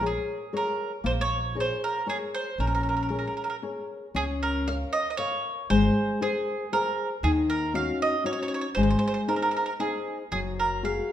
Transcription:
Already playing: upright bass A#1
0.01 nylon-string guitar G#4 A#4 C#5
0.06 mandolin G#4
0.53 nylon-string guitar G#4 A#4 C#5, mandolin A#4
1.04 upright bass A#1, nylon-string guitar A#3, mandolin C5
1.21 mandolin C#5
1.55 nylon-string guitar G#4 A#4 C#5
1.60 mandolin C5
1.84 mandolin A#4
2.06 nylon-string guitar G#4 A#4 C#5, mandolin G#4
2.35 mandolin C5
2.58 upright bass A#1, nylon-string guitar C#4, mandolin A#4
2.67 mandolin A#4
2.75 mandolin A#4
2.83 mandolin A#4
2.89 mandolin A#4
2.97 mandolin A#4
3.03 mandolin A#4
3.09 nylon-string guitar G#4 A#4 C#5, mandolin A#4
3.19 mandolin A#4
3.27 mandolin A#4
3.37 mandolin A#4
3.44 mandolin A#4
3.50 mandolin A#4
3.62 nylon-string guitar G#4 A#4 C#5
4.15 upright bass C#2, nylon-string guitar C#4, mandolin G#4
4.43 mandolin A#4
4.67 nylon-string guitar A#4 C#5 F5, mandolin F5
4.93 mandolin D#5
5.10 mandolin D#5
5.17 nylon-string guitar A#4 C#5 F5, mandolin C#5
5.70 upright bass G#1, nylon-string guitar G#3, mandolin C5
6.21 nylon-string guitar G#4 A#4 C5, mandolin G#4
6.72 nylon-string guitar G#4 A#4 C5, mandolin A#4
7.23 upright bass D#2, nylon-string guitar D#3, mandolin G#4
7.50 mandolin A#4
7.74 nylon-string guitar C#4 D#4 F#4, mandolin F5
8.02 mandolin D#5
8.24 nylon-string guitar C#4 D#4 F#4, mandolin C#5
8.33 mandolin C#5
8.42 mandolin C#5
8.48 mandolin C#5
8.54 mandolin C#5
8.61 mandolin C#5
8.75 upright bass G#1, nylon-string guitar G#3, mandolin C5
8.83 mandolin C5
8.91 mandolin C5
8.99 mandolin C5
9.08 mandolin C5
9.14 mandolin C5
9.28 nylon-string guitar D#4 G#4 C5, mandolin A#4
9.36 mandolin A#4
9.42 mandolin A#4
9.51 mandolin A#4
9.57 mandolin A#4
9.66 mandolin A#4
9.80 nylon-string guitar D#4 G#4 C5, mandolin G#4
10.32 upright bass F#1, nylon-string guitar F#3, mandolin G#4
10.59 mandolin A#4
10.83 nylon-string guitar F#4 G#4 A#4, mandolin F5

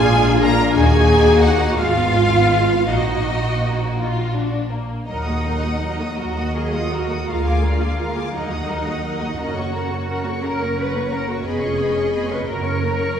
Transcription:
Already playing: double bass section A#1, violin section A#3 D4 G#5, cello section F4, viola section G#4
0.13 violin section G#3
0.30 violin section A#3
0.43 violin section G#3 A#5, viola section A#4
0.62 violin section A#3
0.74 double bass section D#2, violin section A#3 F#4 G#5, cello section D#4, viola section G#4
0.93 violin section A#3
1.11 violin section A#3
1.28 violin section A#3
1.43 violin section A#3 F#5, viola section F#4
1.62 violin section A#3
1.77 double bass section G#1, violin section G#3 F4 F5, viola section F4, cello section F4
1.97 violin section B3
2.15 violin section G#3
2.32 violin section B3
2.50 violin section G#3
2.70 violin section B3
2.88 double bass section A#1, violin section A#3 F#4 D#5, viola section D#4, cello section F#4
3.09 violin section A#3
3.27 violin section A#3
3.47 violin section A#3
3.65 violin section A#3
3.82 violin section A#3
3.99 violin section F4
4.35 violin section D4
4.70 violin section A#3
5.07 double bass section D#2, viola section F#3 A#4, cello section D#4, violin section D#5 F#5 A#5
5.26 viola section A#3 F#4, violin section F#5 D#6
5.44 viola section F#3 A#4, violin section D#5 A#5
5.63 viola section A#3 F#4, violin section F#5 D#6
5.82 viola section F#3 A#4, violin section D#5 A#5
6.01 viola section A#3 F#4, violin section F#5 D#6
6.18 double bass section D#2, viola section F#3 A#4, cello section F#4, violin section D#5 A#5
6.38 viola section A#3 F#4, violin section F#5 D#6
6.54 viola section F#3 A#4, cello section G#4, violin section D#5 A#5
6.73 viola section A#3 F#4, cello section F4, violin section F#5 D#6
6.91 viola section F#3 A#4, cello section F#4, violin section D#5 A#5
7.09 viola section A#3 F#4, violin section F#5 D#6
7.27 double bass section D2, viola section G#3 A#4, cello section F4, violin section F5 A#5
7.45 viola section A#3 G#4, violin section G#5 D6
7.62 viola section G#3 A#4, violin section D5 F5 A#5
7.79 viola section A#3 G#4, violin section G#5 D6
7.97 viola section G#3 A#4, violin section F5 A#5
8.15 viola section A#3 G#4, violin section G#5 D6
8.32 double bass section D#2, viola section F#3 A#4, cello section D#4, violin section D#5 F#5
8.36 violin section A#5
8.49 viola section A#3 F#4, violin section F#5 D#6
8.67 viola section F#3 A#4, violin section D#5 A#5
8.86 viola section A#3 F#4, violin section F#5 D#6
9.04 viola section F#3 A#4, violin section D#5 A#5
9.22 viola section A#3 F#4, violin section F#5 D#6
9.38 double bass section F#1, viola section C#4 A#4, cello section F#4, violin section D#5 F#5 A#5
9.55 viola section A#3 F#4, violin section C#5 C#6
9.74 viola section C#4 A#4, violin section C#5 F#5 A#5
9.90 viola section A#3 F#4, violin section C#5 C#6
10.08 viola section C#4 A#4, violin section A#4 F#5 A#5
10.26 viola section A#3 F#4, violin section C#5 C#6
10.43 double bass section F#1, viola section C#4 A#4, cello section A#4, violin section C#5 F#5 A#5
10.61 viola section A#3 F#4, violin section C#5 C#6
10.78 viola section C#4 A#4, cello section B4, violin section F#5 A#5
10.95 viola section A#3 F#4, violin section C#5 C#6
11.13 viola section C#4 A#4, cello section A#4, violin section F#5 A#5
11.29 viola section A#3 F#4, cello section F#4, violin section C#5 C#6
11.46 double bass section F1, viola section B3 G#4, cello section G#4, violin section B4 D#5 B5
11.62 viola section C#4 F4, violin section C#5 C#6
11.79 viola section B3 G#4, violin section B4 B5
11.96 viola section C#4 F4, violin section C#5 C#6
12.12 viola section B3 G#4, cello section G#4, violin section B4 B5
12.29 viola section C#4 F4, cello section B4, violin section C#5 C#6
12.46 double bass section F#1, viola section A#3 F#4, violin section A#4 A#5, cello section A#4
12.50 violin section C#5
12.64 viola section C#4 A#4, violin section C#5 C#6
12.80 viola section A#3 F#4, violin section A#4 A#5
12.98 viola section C#4 A#4, violin section C#5 C#6
13.15 violin section A#4 A#5

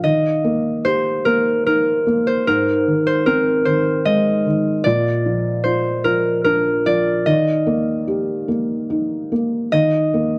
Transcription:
Already playing: harp F5
0.04 felt piano D#3, harp D#5
0.44 felt piano A#3
0.85 felt piano G4, harp C5
1.25 felt piano A#3, harp A#4
1.66 felt piano D#4, harp A#4
2.07 felt piano A#3
2.27 harp C5
2.47 felt piano G#2, harp A#4
2.88 felt piano D#3
3.07 harp C5
3.26 felt piano C4, harp A#4
3.65 felt piano D#3, harp C5
4.05 felt piano G#3, harp D#5
4.46 felt piano D#3
4.84 felt piano A#2, harp D5
5.26 felt piano F3
5.64 felt piano F4, harp C5
6.04 felt piano F3, harp A#4
6.44 felt piano D4, harp A#4
6.86 felt piano F3, harp D5
7.26 felt piano D#3, harp D#5
7.67 felt piano A#3
8.08 felt piano G4
8.48 felt piano A#3
8.90 felt piano D#4
9.32 felt piano A#3
9.72 felt piano D#3, harp D#5
10.14 felt piano A#3

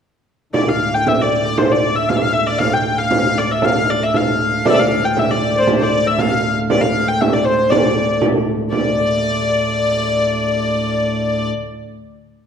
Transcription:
0.53 pipe organ D2 A2, hurdy-gurdy D5, frame drum
0.68 hurdy-gurdy F5
0.80 frame drum
0.94 hurdy-gurdy G5
1.07 hurdy-gurdy E5, frame drum
1.22 hurdy-gurdy D5
1.45 hurdy-gurdy D5
1.58 hurdy-gurdy C5, frame drum
1.71 hurdy-gurdy D5
1.84 frame drum
1.96 hurdy-gurdy E5
2.09 hurdy-gurdy F5, frame drum
2.16 hurdy-gurdy E5
2.21 hurdy-gurdy F5
2.33 hurdy-gurdy E5
2.47 hurdy-gurdy D5
2.58 hurdy-gurdy F5, frame drum
2.73 hurdy-gurdy G5
2.86 frame drum
2.98 hurdy-gurdy F5
3.11 hurdy-gurdy F5, frame drum
3.38 hurdy-gurdy D5
3.51 hurdy-gurdy E5
3.62 hurdy-gurdy F5, frame drum
3.89 hurdy-gurdy D5, frame drum
4.03 hurdy-gurdy E5
4.14 hurdy-gurdy F5, frame drum
4.64 pipe organ D2 A2, hurdy-gurdy D5, frame drum
4.70 hurdy-gurdy D5 E5
4.80 hurdy-gurdy F5
4.92 frame drum
5.05 hurdy-gurdy G5
5.17 hurdy-gurdy E5, frame drum
5.31 hurdy-gurdy D5
5.56 hurdy-gurdy C5 D5
5.62 hurdy-gurdy D5
5.67 hurdy-gurdy C5, frame drum
5.81 hurdy-gurdy D5
5.93 frame drum
6.07 hurdy-gurdy E5
6.18 hurdy-gurdy F5, frame drum
6.70 hurdy-gurdy D5, frame drum
6.81 hurdy-gurdy F5
6.97 frame drum
7.08 hurdy-gurdy G5
7.21 hurdy-gurdy E5, frame drum
7.33 hurdy-gurdy D5
7.45 hurdy-gurdy C5
7.70 hurdy-gurdy D5, frame drum
8.22 frame drum
8.72 pipe organ D2 A2, hurdy-gurdy D5, frame drum

